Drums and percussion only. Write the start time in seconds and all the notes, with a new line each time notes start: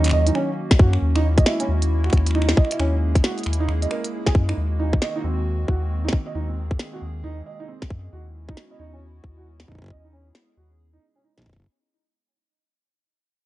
0.04 finger snap, closed hi-hat
0.06 finger snap
0.08 finger snap
0.09 finger snap
0.11 finger snap
0.27 closed hi-hat
0.35 finger snap
0.71 kick, snare
0.79 kick
0.93 finger snap
1.16 finger snap
1.38 kick, closed hi-hat
1.46 finger snap, snare
1.60 closed hi-hat
1.82 closed hi-hat
2.04 finger snap
2.10 finger snap, kick, closed hi-hat
2.17 finger snap
2.27 finger snap, closed hi-hat
2.31 finger snap
2.35 finger snap
2.42 finger snap
2.49 snare
2.57 finger snap, kick
2.65 finger snap
2.71 finger snap, closed hi-hat
2.80 finger snap
3.15 finger snap, kick, closed hi-hat
3.24 snare
3.38 closed hi-hat
3.44 finger snap, closed hi-hat
3.53 closed hi-hat
3.69 finger snap
3.82 closed hi-hat
3.91 finger snap
4.04 closed hi-hat
4.26 finger snap, kick, snare
4.35 kick
4.49 finger snap
4.93 kick
5.02 snare
5.68 kick
6.09 snare
6.13 kick
6.71 kick
6.79 snare
7.82 kick, snare
7.90 kick
8.49 kick
8.57 snare
9.24 kick
9.60 snare
9.68 kick
9.72 kick
9.75 kick
9.79 kick
9.82 kick
9.84 kick
9.86 kick
9.88 kick
9.90 kick
10.35 snare
11.38 kick, snare
11.39 kick
11.41 kick, snare
11.43 kick
11.44 kick, snare
11.46 kick
11.49 kick
11.53 kick, snare
11.56 kick
11.60 kick
11.62 kick
11.64 kick
11.66 kick